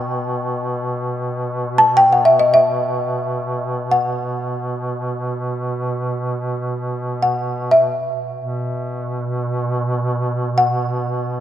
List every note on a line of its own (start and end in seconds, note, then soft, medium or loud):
0.00 8.19 B2 soft
0.00 1.83 G5 medium
1.78 1.97 A5 medium
1.97 2.12 G5 medium
2.13 2.25 F#5 medium
2.25 2.38 E5 medium
2.39 2.54 D#5 medium
2.54 3.94 E5 medium
3.92 5.64 F#5 medium
7.23 7.73 F#5 medium
7.71 10.62 E5 medium
8.36 11.40 B2 soft
10.58 11.40 F#5 medium